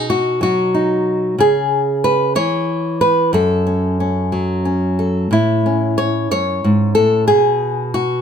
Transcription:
Already playing: B2 D#4
0.10 F#4
0.41 F#3 F#4
0.74 D#4
1.38 C#3 G#4
2.04 B4
2.35 E3 C#5
3.01 B4
3.33 F#2 A4
3.67 C#4
4.00 C#4
4.32 F#3
4.65 C#4
4.99 A4
5.31 A2 E4
5.66 C#4
5.98 C#5
6.31 F#2 C#5
6.64 G#2
6.95 A2 A4
7.28 B2 G#4
7.94 F#4

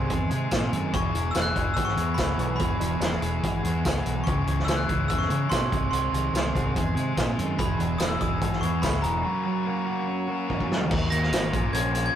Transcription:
Already playing: C3 D#3 G#3 D#4 G#4 C6
0.08 E2 C4, kick, closed hi-hat
0.30 C3 G#3 D#4 G#4, closed hi-hat
0.51 A#2 C4 D#4 G#4, kick, snare, closed hi-hat, tambourine
0.71 F#2 D#3, closed hi-hat
0.92 E1 E2 B3 E4 G#4 C#6, kick, closed hi-hat
1.13 E1 E3 E4 G#4, closed hi-hat
1.31 G#3 B3 E4 E6, closed hi-hat, tambourine
1.35 E1 G#4, snare
1.42 F#6
1.54 E1 E4 G#4, kick, closed hi-hat
1.74 G#1 B3 E6, kick, closed hi-hat
1.85 C#6, snare
1.96 E2 G#3 E4 G#4, closed hi-hat
2.14 C#2 B3 B5, kick, closed hi-hat, tambourine
2.18 E4 G#4, snare
2.38 B1 E3, closed hi-hat
2.56 E2 B3 B5, closed hi-hat
2.60 E1 E4 G#4, kick
2.79 E1 E3 E4 G#4, closed hi-hat
3.00 E1 G#3 B3 E4 G#4, snare, closed hi-hat, tambourine
3.21 E1 E4 G#4, closed hi-hat
3.43 G#1 B3, kick, closed hi-hat
3.63 E2 G#3 E4 G#4, closed hi-hat
3.84 C#2 B3 E4 G#4, kick, snare, closed hi-hat, tambourine
4.05 B1 E3, closed hi-hat
4.24 C#2 C#3 C#4 E4 C#6, kick, closed hi-hat
4.29 G#4
4.46 C#2 E3 E4 G#4, closed hi-hat
4.59 snare
4.65 C#2 G#3 C#4 E4 E6, closed hi-hat, tambourine
4.69 G#4, snare
4.76 F#6
4.86 C#2 E4 G#4, kick, closed hi-hat
5.08 E2 C#4 E6, kick, closed hi-hat
5.18 C#6, snare
5.28 C#3 G#3 E4 G#4, closed hi-hat
5.49 B2 C#4 E4 G#4 C6, kick, snare, closed hi-hat, tambourine
5.70 C2 C3 C4 D#4 G#4, kick, closed hi-hat
5.91 C2 C3 C4 D#4 G#4 C6, closed hi-hat
6.12 C2 D#3 D#4 G#4, closed hi-hat
6.33 C2 G#3 C4 D#4 G#4, snare, closed hi-hat, tambourine
6.53 C2 D#4 G#4, kick, closed hi-hat
6.75 E2 C4, kick, closed hi-hat
6.94 C3 G#3 D#4 G#4, closed hi-hat
7.15 A#2 C4 D#4 G#4, kick, snare, closed hi-hat, tambourine
7.37 F#2 D#3, closed hi-hat
7.57 E1 E2 B3 E4 G#4 B5, kick, closed hi-hat
7.78 E1 E3 E4 G#4, closed hi-hat
7.98 E1 G#3 B3 E4 G#4 D#6, snare, closed hi-hat, tambourine
8.08 E6
8.19 E1 E4 G#4 D#6, kick, closed hi-hat
8.41 G#1 B3, kick, closed hi-hat
8.53 snare
8.61 E2 G#3 E4 G#4 C#6, closed hi-hat
8.81 C#2 B3 E4 G#4 B5, kick, snare, closed hi-hat, tambourine
9.02 E1 E3 A#5, closed hi-hat
9.22 F#2 A#3 C#4 F#4
9.44 F#3 C#4 F#4
9.65 A#3 C#4 F#4
9.86 C#4 F#4
10.07 C#4
10.28 A#3 C#4 F#4
10.47 A#3 C#4 F#4, kick
10.60 kick
10.70 F#3, snare
10.81 floor tom
10.89 D#2 D#3 A#3 D#4 F#4, kick, crash
11.10 D#2 A#3 D#4 F#4 A#6, closed hi-hat
11.23 snare
11.32 G#1 D#3 A#3 D#4 F#4, snare, closed hi-hat, tambourine
11.52 A#1 A#2 F3 A#3 C#4 F4, kick, closed hi-hat
11.73 A#1 F3 A#3 C#4 F4 G#6, closed hi-hat
11.93 F3 A#3 C#4 F4 G#4, closed hi-hat
12.06 G#6

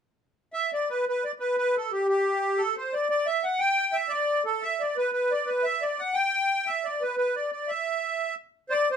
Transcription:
0.53 E5
0.74 D5
0.90 B4
1.08 B4
1.25 D5
1.40 B4
1.57 B4
1.77 A4
1.92 G4
2.08 G4
2.58 A4
2.77 C5
2.93 D5
3.10 D5
3.26 E5
3.44 F#5
3.59 G5
3.93 E5
4.09 D5
4.45 A4
4.63 E5
4.80 D5
4.97 B4
5.12 B4
5.32 D5
5.46 B4
5.63 E5
5.82 D5
5.99 F#5
6.14 G5
6.67 E5
6.84 D5
7.01 B4
7.17 B4
7.36 D5
7.52 D5
7.68 E5
8.69 C5 D5
8.91 C5

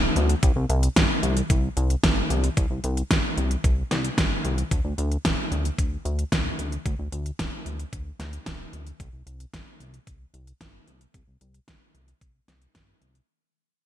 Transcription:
0.16 D2, closed hi-hat
0.29 closed hi-hat
0.43 C2, kick, closed hi-hat
0.56 C2
0.69 C2, closed hi-hat
0.83 closed hi-hat
0.96 G1, kick, snare, closed hi-hat
1.23 C2, closed hi-hat
1.37 closed hi-hat
1.50 C2, kick, closed hi-hat
1.77 C2, closed hi-hat
1.90 closed hi-hat
2.03 G1, kick, snare, closed hi-hat
2.30 C2, closed hi-hat
2.44 closed hi-hat
2.57 C2, kick, closed hi-hat
2.70 C2
2.84 C2, closed hi-hat
2.97 closed hi-hat
3.11 G1, kick, snare, closed hi-hat
3.37 C2, closed hi-hat
3.51 closed hi-hat
3.64 C2, kick, closed hi-hat
3.91 C2, snare, closed hi-hat
4.04 closed hi-hat
4.18 G1, kick, snare, closed hi-hat
4.45 C2, closed hi-hat
4.58 closed hi-hat
4.71 D2, kick, closed hi-hat
4.85 D2
4.98 D2, closed hi-hat
5.12 closed hi-hat
5.25 D1, kick, snare, closed hi-hat
5.52 D2, closed hi-hat
5.65 closed hi-hat
5.78 D2, kick, closed hi-hat
6.05 D2, closed hi-hat
6.19 closed hi-hat
6.32 D1, kick, snare, closed hi-hat
6.59 D2, closed hi-hat
6.72 closed hi-hat
6.86 D2, kick, closed hi-hat
6.99 D2
7.12 D2, closed hi-hat
7.26 closed hi-hat
7.39 D1, kick, snare, closed hi-hat
7.66 D2, closed hi-hat
7.79 closed hi-hat
7.93 D2, kick, closed hi-hat
8.19 D2, snare, closed hi-hat
8.33 closed hi-hat
8.46 D1, kick, snare, closed hi-hat
8.73 D2, closed hi-hat
8.87 closed hi-hat
9.00 C2, kick, closed hi-hat
9.13 C2
9.27 C2, closed hi-hat
9.40 closed hi-hat
9.53 G1, kick, snare, closed hi-hat
9.80 C2, closed hi-hat
9.94 closed hi-hat
10.07 C2, kick, closed hi-hat
10.34 C2, closed hi-hat
10.47 closed hi-hat
10.61 G1, kick, snare, closed hi-hat
10.87 C2, closed hi-hat
11.01 closed hi-hat
11.14 C2, kick, closed hi-hat
11.28 C2
11.41 C2, closed hi-hat
11.54 closed hi-hat
11.68 G1, kick, snare, closed hi-hat
11.95 C2, closed hi-hat
12.08 closed hi-hat
12.21 C2, kick, closed hi-hat
12.48 C2, snare, closed hi-hat
12.62 closed hi-hat
12.75 G1, kick, snare, closed hi-hat
13.02 C2, closed hi-hat
13.15 closed hi-hat

